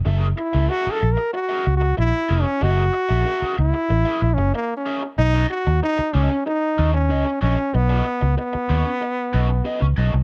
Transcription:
<<
  \new Staff \with { instrumentName = "Overdriven electric guitar" } { \time 4/4 \key b \major \tempo 4 = 94 <cis' gis' ais' e''>16 r8 <cis' gis' ais' e''>16 <cis' gis' ais' e''>8 r8. <cis' gis' ais' e''>16 r4 <cis' gis' ais' e''>16 r16 | <cis' gis' ais' e''>16 r8 <cis' gis' ais' e''>16 <cis' gis' ais' e''>8 r8. <cis' gis' ais' e''>16 r4 <cis' gis' ais' e''>16 r16 | r16 <cis' fis' a' dis''>16 r4 <cis' fis' a' dis''>16 r8. <cis' fis' a' dis''>16 r16 <cis' fis' a' dis''>16 r16 <cis' fis' a' dis''>16 r16 | r16 <cis' fis' a' dis''>16 r4 <cis' fis' a' dis''>16 r8. <cis' fis' a' dis''>16 r16 <cis' fis' a' dis''>16 r16 <cis' fis' a' dis''>16 r16 | }
  \new Staff \with { instrumentName = "Trombone" } { \time 4/4 \key b \major r8 e'8 \tuplet 3/2 { fis'8 a'8 ais'8 fis'4 fis'8 e'4 cis'8 } | fis'4. e'8~ \tuplet 3/2 { e'4 cis'8 ais8 cis'8. r16 } | dis'8 fis'8 dis'8 cis'8 dis'8. cis'8. cis'8 | b4 b2~ b8 r8 | }
  \new Staff \with { instrumentName = "Fingered electric bass" } { \clef bass \time 4/4 \key b \major fis,,8 r16 cis,16 r8 ais,,16 r8. cis,8 ais,,16 r16 eis,,16 r16 | fis,,8 r16 ais,,16 r8 cis,16 r16 a,,16 r16 ais,,16 fis,,16 r4 | b,,8 r16 dis,16 r8 cis,16 r8. dis,8 cis,16 r16 ais,,16 r16 | b,,8 r16 cis,16 r8 dis,16 r8. b,,8 r16 cis,16 b,,16 bis,,16 | }
>>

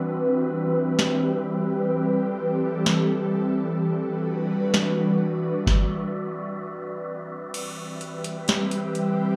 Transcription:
<<
  \new Staff \with { instrumentName = "Synth texture" } { \time 4/4 \key c \lydian \tempo 4 = 128 << { e''1~ | e''1 | <d'' e''>1~ | <d'' e''>1 |
<b' e''>1 | } \\ { <c' b'>1~ | <c' b'>1 | <g fis'>1 | <c' b'>1 |
c'1 | } >> }
  \new Staff \with { instrumentName = "Ambient pad" } { \time 4/4 \key c \lydian << { b'1 | a'1 | <d' b'>1 | r1 |
<c' b'>1 | } \\ { <e g c' g'>1~ | <e g c' g'>1 | <e g fis'>1 | r1 |
<e g g'>1 | } >> }
  \new DrumStaff \with { instrumentName = "Drums" } \drummode { \time 4/4 r4 r4 sn4 r4 | r4 r4 sn4 r4 | r4 r4 sn4 r4 | <bd sn>4 r4 r4 r4 |
<cymc hh>4 hh8 hh8 <hh sn>8 hh8 hh4 | }
>>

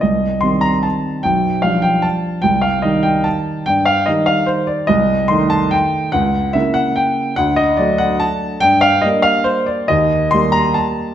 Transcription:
<<
  \new Staff \with { instrumentName = "Grand piano" } { \time 3/4 \key c \dorian \tempo 4 = 145 ees''4 c'''8 bes''8 a''4 | g''4 f''8 g''8 a''4 | g''8 f''8 ees''8 g''8 a''4 | g''8 f''8 ees''8 f''8 c''8 d''8 |
\key g \minor ees''4 c'''8 a''8 g''4 | fis''4 e''8 fis''8 g''4 | fis''8 ees''8 d''8 fis''8 a''4 | g''8 f''8 ees''8 f''8 c''8 d''8 |
ees''4 c'''8 bes''8 a''4 | }
  \new Staff \with { instrumentName = "Grand piano" } { \clef bass \time 3/4 \key c \dorian c,4 <ees g c'>2 | b,,4 <f g d'>2 | c,4 <ees g ees'>2 | g,4 <ees g ees'>2 |
\key g \minor c,4 <ees a ees'>2 | cis,4 <cis ais e'>2 | d,4 <fis a d'>2 | g,4 <g bes d'>2 |
ees,4 <g bes g'>2 | }
>>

